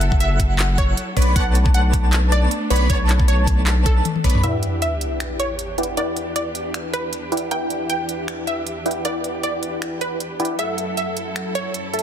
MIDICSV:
0, 0, Header, 1, 8, 480
1, 0, Start_track
1, 0, Tempo, 384615
1, 1696, Time_signature, 4, 2, 24, 8
1, 15008, End_track
2, 0, Start_track
2, 0, Title_t, "Digital synth lead"
2, 0, Program_c, 0, 84
2, 0, Note_on_c, 0, 78, 94
2, 1190, Note_off_c, 0, 78, 0
2, 1456, Note_on_c, 0, 83, 87
2, 1670, Note_off_c, 0, 83, 0
2, 1696, Note_on_c, 0, 81, 99
2, 3110, Note_off_c, 0, 81, 0
2, 3376, Note_on_c, 0, 83, 85
2, 3590, Note_off_c, 0, 83, 0
2, 3615, Note_on_c, 0, 81, 96
2, 5029, Note_off_c, 0, 81, 0
2, 5295, Note_on_c, 0, 83, 85
2, 5510, Note_off_c, 0, 83, 0
2, 15008, End_track
3, 0, Start_track
3, 0, Title_t, "Supersaw synth"
3, 0, Program_c, 1, 81
3, 0, Note_on_c, 1, 69, 90
3, 0, Note_on_c, 1, 76, 86
3, 0, Note_on_c, 1, 78, 100
3, 1189, Note_off_c, 1, 69, 0
3, 1189, Note_off_c, 1, 76, 0
3, 1189, Note_off_c, 1, 78, 0
3, 1455, Note_on_c, 1, 59, 81
3, 1455, Note_on_c, 1, 71, 75
3, 1455, Note_on_c, 1, 73, 71
3, 1455, Note_on_c, 1, 74, 74
3, 1455, Note_on_c, 1, 83, 93
3, 1669, Note_off_c, 1, 71, 0
3, 1669, Note_off_c, 1, 73, 0
3, 1669, Note_off_c, 1, 74, 0
3, 1669, Note_off_c, 1, 83, 0
3, 1670, Note_off_c, 1, 59, 0
3, 1695, Note_on_c, 1, 59, 87
3, 1695, Note_on_c, 1, 71, 81
3, 1695, Note_on_c, 1, 73, 80
3, 1695, Note_on_c, 1, 74, 86
3, 1695, Note_on_c, 1, 81, 101
3, 3109, Note_off_c, 1, 59, 0
3, 3109, Note_off_c, 1, 71, 0
3, 3109, Note_off_c, 1, 73, 0
3, 3109, Note_off_c, 1, 74, 0
3, 3109, Note_off_c, 1, 81, 0
3, 3374, Note_on_c, 1, 71, 75
3, 3374, Note_on_c, 1, 73, 74
3, 3374, Note_on_c, 1, 74, 74
3, 3375, Note_on_c, 1, 59, 82
3, 3375, Note_on_c, 1, 83, 90
3, 3589, Note_off_c, 1, 59, 0
3, 3589, Note_off_c, 1, 71, 0
3, 3589, Note_off_c, 1, 73, 0
3, 3589, Note_off_c, 1, 74, 0
3, 3589, Note_off_c, 1, 83, 0
3, 3614, Note_on_c, 1, 59, 93
3, 3614, Note_on_c, 1, 73, 80
3, 3614, Note_on_c, 1, 81, 101
3, 3615, Note_on_c, 1, 71, 83
3, 3615, Note_on_c, 1, 74, 83
3, 5029, Note_off_c, 1, 59, 0
3, 5029, Note_off_c, 1, 71, 0
3, 5029, Note_off_c, 1, 73, 0
3, 5029, Note_off_c, 1, 74, 0
3, 5029, Note_off_c, 1, 81, 0
3, 5295, Note_on_c, 1, 59, 82
3, 5295, Note_on_c, 1, 71, 71
3, 5295, Note_on_c, 1, 73, 72
3, 5295, Note_on_c, 1, 74, 72
3, 5295, Note_on_c, 1, 83, 85
3, 5509, Note_off_c, 1, 59, 0
3, 5509, Note_off_c, 1, 71, 0
3, 5510, Note_off_c, 1, 73, 0
3, 5510, Note_off_c, 1, 74, 0
3, 5510, Note_off_c, 1, 83, 0
3, 5535, Note_on_c, 1, 64, 85
3, 5535, Note_on_c, 1, 71, 80
3, 5535, Note_on_c, 1, 74, 75
3, 5535, Note_on_c, 1, 79, 97
3, 5536, Note_on_c, 1, 78, 80
3, 6949, Note_off_c, 1, 64, 0
3, 6949, Note_off_c, 1, 71, 0
3, 6949, Note_off_c, 1, 74, 0
3, 6949, Note_off_c, 1, 79, 0
3, 6950, Note_off_c, 1, 78, 0
3, 7214, Note_on_c, 1, 64, 75
3, 7214, Note_on_c, 1, 74, 72
3, 7214, Note_on_c, 1, 79, 84
3, 7215, Note_on_c, 1, 71, 70
3, 7215, Note_on_c, 1, 78, 69
3, 7429, Note_off_c, 1, 64, 0
3, 7429, Note_off_c, 1, 71, 0
3, 7429, Note_off_c, 1, 74, 0
3, 7429, Note_off_c, 1, 78, 0
3, 7429, Note_off_c, 1, 79, 0
3, 7455, Note_on_c, 1, 64, 86
3, 7455, Note_on_c, 1, 71, 79
3, 7455, Note_on_c, 1, 74, 82
3, 7455, Note_on_c, 1, 78, 78
3, 7455, Note_on_c, 1, 79, 94
3, 8869, Note_off_c, 1, 64, 0
3, 8869, Note_off_c, 1, 71, 0
3, 8869, Note_off_c, 1, 74, 0
3, 8870, Note_off_c, 1, 78, 0
3, 8870, Note_off_c, 1, 79, 0
3, 9134, Note_on_c, 1, 64, 73
3, 9134, Note_on_c, 1, 71, 72
3, 9134, Note_on_c, 1, 74, 66
3, 9134, Note_on_c, 1, 78, 69
3, 9134, Note_on_c, 1, 79, 85
3, 9349, Note_off_c, 1, 64, 0
3, 9349, Note_off_c, 1, 71, 0
3, 9349, Note_off_c, 1, 74, 0
3, 9349, Note_off_c, 1, 78, 0
3, 9349, Note_off_c, 1, 79, 0
3, 9373, Note_on_c, 1, 64, 83
3, 9373, Note_on_c, 1, 71, 77
3, 9373, Note_on_c, 1, 74, 80
3, 9373, Note_on_c, 1, 78, 77
3, 9373, Note_on_c, 1, 79, 91
3, 10788, Note_off_c, 1, 64, 0
3, 10788, Note_off_c, 1, 74, 0
3, 10788, Note_off_c, 1, 78, 0
3, 10789, Note_off_c, 1, 71, 0
3, 10789, Note_off_c, 1, 79, 0
3, 11054, Note_on_c, 1, 71, 70
3, 11054, Note_on_c, 1, 74, 66
3, 11054, Note_on_c, 1, 78, 67
3, 11054, Note_on_c, 1, 79, 86
3, 11055, Note_on_c, 1, 64, 76
3, 11269, Note_off_c, 1, 64, 0
3, 11269, Note_off_c, 1, 71, 0
3, 11269, Note_off_c, 1, 74, 0
3, 11269, Note_off_c, 1, 78, 0
3, 11269, Note_off_c, 1, 79, 0
3, 11294, Note_on_c, 1, 64, 88
3, 11294, Note_on_c, 1, 71, 79
3, 11294, Note_on_c, 1, 74, 78
3, 11294, Note_on_c, 1, 78, 83
3, 11294, Note_on_c, 1, 79, 98
3, 12709, Note_off_c, 1, 64, 0
3, 12709, Note_off_c, 1, 71, 0
3, 12709, Note_off_c, 1, 74, 0
3, 12709, Note_off_c, 1, 78, 0
3, 12709, Note_off_c, 1, 79, 0
3, 12975, Note_on_c, 1, 64, 74
3, 12975, Note_on_c, 1, 74, 70
3, 12975, Note_on_c, 1, 78, 68
3, 12975, Note_on_c, 1, 79, 84
3, 12976, Note_on_c, 1, 71, 72
3, 13190, Note_off_c, 1, 64, 0
3, 13190, Note_off_c, 1, 71, 0
3, 13190, Note_off_c, 1, 74, 0
3, 13190, Note_off_c, 1, 78, 0
3, 13190, Note_off_c, 1, 79, 0
3, 13216, Note_on_c, 1, 69, 85
3, 13216, Note_on_c, 1, 76, 79
3, 13216, Note_on_c, 1, 78, 93
3, 14630, Note_off_c, 1, 69, 0
3, 14630, Note_off_c, 1, 76, 0
3, 14630, Note_off_c, 1, 78, 0
3, 14895, Note_on_c, 1, 69, 74
3, 14895, Note_on_c, 1, 81, 83
3, 14896, Note_on_c, 1, 76, 70
3, 15008, Note_off_c, 1, 69, 0
3, 15008, Note_off_c, 1, 76, 0
3, 15008, Note_off_c, 1, 81, 0
3, 15008, End_track
4, 0, Start_track
4, 0, Title_t, "Synth pluck"
4, 0, Program_c, 2, 84
4, 256, Note_on_c, 2, 76, 95
4, 448, Note_off_c, 2, 76, 0
4, 976, Note_on_c, 2, 73, 99
4, 1168, Note_off_c, 2, 73, 0
4, 1696, Note_on_c, 2, 78, 101
4, 1946, Note_off_c, 2, 78, 0
4, 2177, Note_on_c, 2, 78, 88
4, 2369, Note_off_c, 2, 78, 0
4, 2897, Note_on_c, 2, 74, 100
4, 3089, Note_off_c, 2, 74, 0
4, 3614, Note_on_c, 2, 73, 93
4, 3865, Note_off_c, 2, 73, 0
4, 4096, Note_on_c, 2, 73, 91
4, 4288, Note_off_c, 2, 73, 0
4, 4816, Note_on_c, 2, 69, 101
4, 5008, Note_off_c, 2, 69, 0
4, 5535, Note_on_c, 2, 76, 88
4, 5785, Note_off_c, 2, 76, 0
4, 6016, Note_on_c, 2, 76, 90
4, 6208, Note_off_c, 2, 76, 0
4, 6735, Note_on_c, 2, 73, 96
4, 6927, Note_off_c, 2, 73, 0
4, 7454, Note_on_c, 2, 74, 94
4, 7705, Note_off_c, 2, 74, 0
4, 7934, Note_on_c, 2, 74, 88
4, 8127, Note_off_c, 2, 74, 0
4, 8654, Note_on_c, 2, 71, 93
4, 8847, Note_off_c, 2, 71, 0
4, 9376, Note_on_c, 2, 79, 95
4, 9626, Note_off_c, 2, 79, 0
4, 9855, Note_on_c, 2, 79, 89
4, 10048, Note_off_c, 2, 79, 0
4, 10575, Note_on_c, 2, 76, 91
4, 10768, Note_off_c, 2, 76, 0
4, 11295, Note_on_c, 2, 74, 93
4, 11546, Note_off_c, 2, 74, 0
4, 11775, Note_on_c, 2, 74, 87
4, 11968, Note_off_c, 2, 74, 0
4, 12495, Note_on_c, 2, 71, 91
4, 12688, Note_off_c, 2, 71, 0
4, 13215, Note_on_c, 2, 76, 93
4, 13466, Note_off_c, 2, 76, 0
4, 13695, Note_on_c, 2, 76, 88
4, 13888, Note_off_c, 2, 76, 0
4, 14416, Note_on_c, 2, 73, 96
4, 14608, Note_off_c, 2, 73, 0
4, 15008, End_track
5, 0, Start_track
5, 0, Title_t, "String section"
5, 0, Program_c, 3, 48
5, 0, Note_on_c, 3, 54, 84
5, 0, Note_on_c, 3, 64, 71
5, 0, Note_on_c, 3, 69, 91
5, 1420, Note_off_c, 3, 54, 0
5, 1420, Note_off_c, 3, 64, 0
5, 1420, Note_off_c, 3, 69, 0
5, 1455, Note_on_c, 3, 59, 76
5, 1456, Note_on_c, 3, 57, 83
5, 1456, Note_on_c, 3, 62, 87
5, 5495, Note_off_c, 3, 57, 0
5, 5495, Note_off_c, 3, 59, 0
5, 5495, Note_off_c, 3, 62, 0
5, 5534, Note_on_c, 3, 40, 71
5, 5535, Note_on_c, 3, 52, 69
5, 5535, Note_on_c, 3, 62, 68
5, 5535, Note_on_c, 3, 67, 83
5, 13165, Note_off_c, 3, 40, 0
5, 13165, Note_off_c, 3, 52, 0
5, 13165, Note_off_c, 3, 62, 0
5, 13165, Note_off_c, 3, 67, 0
5, 13215, Note_on_c, 3, 54, 69
5, 13215, Note_on_c, 3, 69, 84
5, 13216, Note_on_c, 3, 42, 73
5, 13216, Note_on_c, 3, 64, 72
5, 15008, Note_off_c, 3, 42, 0
5, 15008, Note_off_c, 3, 54, 0
5, 15008, Note_off_c, 3, 64, 0
5, 15008, Note_off_c, 3, 69, 0
5, 15008, End_track
6, 0, Start_track
6, 0, Title_t, "Sub bass"
6, 0, Program_c, 4, 38
6, 0, Note_on_c, 4, 30, 101
6, 1168, Note_off_c, 4, 30, 0
6, 1455, Note_on_c, 4, 35, 97
6, 1674, Note_off_c, 4, 35, 0
6, 1696, Note_on_c, 4, 35, 97
6, 3088, Note_off_c, 4, 35, 0
6, 3375, Note_on_c, 4, 35, 97
6, 3594, Note_off_c, 4, 35, 0
6, 3616, Note_on_c, 4, 35, 97
6, 5008, Note_off_c, 4, 35, 0
6, 5295, Note_on_c, 4, 35, 101
6, 5514, Note_off_c, 4, 35, 0
6, 15008, End_track
7, 0, Start_track
7, 0, Title_t, "Sub drop"
7, 0, Program_c, 5, 103
7, 5534, Note_on_c, 5, 60, 66
7, 7455, Note_off_c, 5, 60, 0
7, 15008, End_track
8, 0, Start_track
8, 0, Title_t, "Drums"
8, 14, Note_on_c, 9, 42, 64
8, 139, Note_off_c, 9, 42, 0
8, 148, Note_on_c, 9, 36, 97
8, 255, Note_on_c, 9, 42, 78
8, 273, Note_off_c, 9, 36, 0
8, 379, Note_off_c, 9, 42, 0
8, 494, Note_on_c, 9, 42, 67
8, 496, Note_on_c, 9, 36, 60
8, 619, Note_off_c, 9, 42, 0
8, 621, Note_off_c, 9, 36, 0
8, 735, Note_on_c, 9, 39, 117
8, 735, Note_on_c, 9, 42, 83
8, 860, Note_off_c, 9, 39, 0
8, 860, Note_off_c, 9, 42, 0
8, 975, Note_on_c, 9, 42, 69
8, 976, Note_on_c, 9, 36, 100
8, 1100, Note_off_c, 9, 42, 0
8, 1101, Note_off_c, 9, 36, 0
8, 1216, Note_on_c, 9, 42, 79
8, 1340, Note_off_c, 9, 42, 0
8, 1455, Note_on_c, 9, 42, 48
8, 1456, Note_on_c, 9, 36, 57
8, 1521, Note_off_c, 9, 42, 0
8, 1521, Note_on_c, 9, 42, 66
8, 1581, Note_off_c, 9, 36, 0
8, 1646, Note_off_c, 9, 42, 0
8, 1696, Note_on_c, 9, 36, 116
8, 1696, Note_on_c, 9, 42, 87
8, 1821, Note_off_c, 9, 36, 0
8, 1821, Note_off_c, 9, 42, 0
8, 1936, Note_on_c, 9, 42, 68
8, 2061, Note_off_c, 9, 42, 0
8, 2068, Note_on_c, 9, 36, 102
8, 2176, Note_on_c, 9, 42, 78
8, 2193, Note_off_c, 9, 36, 0
8, 2301, Note_off_c, 9, 42, 0
8, 2415, Note_on_c, 9, 42, 68
8, 2416, Note_on_c, 9, 36, 59
8, 2539, Note_off_c, 9, 42, 0
8, 2541, Note_off_c, 9, 36, 0
8, 2655, Note_on_c, 9, 39, 113
8, 2655, Note_on_c, 9, 42, 83
8, 2780, Note_off_c, 9, 39, 0
8, 2780, Note_off_c, 9, 42, 0
8, 2896, Note_on_c, 9, 42, 70
8, 3021, Note_off_c, 9, 42, 0
8, 3136, Note_on_c, 9, 42, 84
8, 3260, Note_off_c, 9, 42, 0
8, 3376, Note_on_c, 9, 42, 55
8, 3443, Note_off_c, 9, 42, 0
8, 3443, Note_on_c, 9, 42, 70
8, 3567, Note_off_c, 9, 42, 0
8, 3616, Note_on_c, 9, 36, 119
8, 3616, Note_on_c, 9, 42, 81
8, 3741, Note_off_c, 9, 36, 0
8, 3741, Note_off_c, 9, 42, 0
8, 3856, Note_on_c, 9, 39, 56
8, 3856, Note_on_c, 9, 42, 67
8, 3981, Note_off_c, 9, 39, 0
8, 3981, Note_off_c, 9, 42, 0
8, 3988, Note_on_c, 9, 36, 104
8, 4096, Note_on_c, 9, 42, 86
8, 4113, Note_off_c, 9, 36, 0
8, 4221, Note_off_c, 9, 42, 0
8, 4336, Note_on_c, 9, 36, 64
8, 4336, Note_on_c, 9, 42, 72
8, 4460, Note_off_c, 9, 36, 0
8, 4461, Note_off_c, 9, 42, 0
8, 4576, Note_on_c, 9, 39, 115
8, 4576, Note_on_c, 9, 42, 88
8, 4701, Note_off_c, 9, 39, 0
8, 4701, Note_off_c, 9, 42, 0
8, 4815, Note_on_c, 9, 42, 70
8, 4816, Note_on_c, 9, 36, 101
8, 4940, Note_off_c, 9, 36, 0
8, 4940, Note_off_c, 9, 42, 0
8, 5056, Note_on_c, 9, 42, 81
8, 5056, Note_on_c, 9, 48, 65
8, 5181, Note_off_c, 9, 42, 0
8, 5181, Note_off_c, 9, 48, 0
8, 5187, Note_on_c, 9, 48, 64
8, 5295, Note_on_c, 9, 36, 58
8, 5295, Note_on_c, 9, 42, 50
8, 5312, Note_off_c, 9, 48, 0
8, 5362, Note_off_c, 9, 42, 0
8, 5362, Note_on_c, 9, 42, 68
8, 5420, Note_off_c, 9, 36, 0
8, 5428, Note_on_c, 9, 45, 88
8, 5486, Note_off_c, 9, 42, 0
8, 5535, Note_on_c, 9, 42, 76
8, 5552, Note_off_c, 9, 45, 0
8, 5659, Note_off_c, 9, 42, 0
8, 5774, Note_on_c, 9, 42, 58
8, 5899, Note_off_c, 9, 42, 0
8, 6015, Note_on_c, 9, 42, 78
8, 6140, Note_off_c, 9, 42, 0
8, 6255, Note_on_c, 9, 42, 66
8, 6380, Note_off_c, 9, 42, 0
8, 6493, Note_on_c, 9, 26, 91
8, 6493, Note_on_c, 9, 42, 76
8, 6618, Note_off_c, 9, 26, 0
8, 6618, Note_off_c, 9, 42, 0
8, 6733, Note_on_c, 9, 42, 61
8, 6858, Note_off_c, 9, 42, 0
8, 6974, Note_on_c, 9, 42, 75
8, 7099, Note_off_c, 9, 42, 0
8, 7214, Note_on_c, 9, 42, 45
8, 7280, Note_off_c, 9, 42, 0
8, 7280, Note_on_c, 9, 42, 62
8, 7405, Note_off_c, 9, 42, 0
8, 7454, Note_on_c, 9, 42, 74
8, 7579, Note_off_c, 9, 42, 0
8, 7694, Note_on_c, 9, 42, 60
8, 7819, Note_off_c, 9, 42, 0
8, 7935, Note_on_c, 9, 42, 77
8, 8059, Note_off_c, 9, 42, 0
8, 8174, Note_on_c, 9, 42, 61
8, 8299, Note_off_c, 9, 42, 0
8, 8415, Note_on_c, 9, 26, 94
8, 8415, Note_on_c, 9, 42, 78
8, 8540, Note_off_c, 9, 26, 0
8, 8540, Note_off_c, 9, 42, 0
8, 8655, Note_on_c, 9, 42, 65
8, 8780, Note_off_c, 9, 42, 0
8, 8895, Note_on_c, 9, 42, 73
8, 9019, Note_off_c, 9, 42, 0
8, 9135, Note_on_c, 9, 42, 46
8, 9201, Note_off_c, 9, 42, 0
8, 9201, Note_on_c, 9, 42, 63
8, 9326, Note_off_c, 9, 42, 0
8, 9375, Note_on_c, 9, 42, 71
8, 9500, Note_off_c, 9, 42, 0
8, 9614, Note_on_c, 9, 42, 56
8, 9739, Note_off_c, 9, 42, 0
8, 9854, Note_on_c, 9, 42, 70
8, 9979, Note_off_c, 9, 42, 0
8, 10094, Note_on_c, 9, 42, 60
8, 10219, Note_off_c, 9, 42, 0
8, 10334, Note_on_c, 9, 26, 93
8, 10334, Note_on_c, 9, 42, 70
8, 10459, Note_off_c, 9, 26, 0
8, 10459, Note_off_c, 9, 42, 0
8, 10574, Note_on_c, 9, 42, 59
8, 10699, Note_off_c, 9, 42, 0
8, 10814, Note_on_c, 9, 42, 72
8, 10939, Note_off_c, 9, 42, 0
8, 11054, Note_on_c, 9, 42, 44
8, 11120, Note_off_c, 9, 42, 0
8, 11120, Note_on_c, 9, 42, 57
8, 11245, Note_off_c, 9, 42, 0
8, 11293, Note_on_c, 9, 42, 68
8, 11418, Note_off_c, 9, 42, 0
8, 11534, Note_on_c, 9, 42, 54
8, 11659, Note_off_c, 9, 42, 0
8, 11774, Note_on_c, 9, 42, 69
8, 11899, Note_off_c, 9, 42, 0
8, 12015, Note_on_c, 9, 42, 57
8, 12139, Note_off_c, 9, 42, 0
8, 12254, Note_on_c, 9, 26, 91
8, 12254, Note_on_c, 9, 42, 72
8, 12379, Note_off_c, 9, 26, 0
8, 12379, Note_off_c, 9, 42, 0
8, 12494, Note_on_c, 9, 42, 58
8, 12619, Note_off_c, 9, 42, 0
8, 12734, Note_on_c, 9, 42, 70
8, 12859, Note_off_c, 9, 42, 0
8, 12975, Note_on_c, 9, 42, 42
8, 13041, Note_off_c, 9, 42, 0
8, 13041, Note_on_c, 9, 42, 58
8, 13166, Note_off_c, 9, 42, 0
8, 13214, Note_on_c, 9, 42, 72
8, 13338, Note_off_c, 9, 42, 0
8, 13454, Note_on_c, 9, 42, 55
8, 13579, Note_off_c, 9, 42, 0
8, 13694, Note_on_c, 9, 42, 69
8, 13819, Note_off_c, 9, 42, 0
8, 13936, Note_on_c, 9, 42, 62
8, 14060, Note_off_c, 9, 42, 0
8, 14176, Note_on_c, 9, 26, 85
8, 14176, Note_on_c, 9, 42, 73
8, 14300, Note_off_c, 9, 26, 0
8, 14300, Note_off_c, 9, 42, 0
8, 14416, Note_on_c, 9, 42, 62
8, 14541, Note_off_c, 9, 42, 0
8, 14655, Note_on_c, 9, 42, 70
8, 14780, Note_off_c, 9, 42, 0
8, 14896, Note_on_c, 9, 42, 46
8, 14961, Note_off_c, 9, 42, 0
8, 14961, Note_on_c, 9, 42, 60
8, 15008, Note_off_c, 9, 42, 0
8, 15008, End_track
0, 0, End_of_file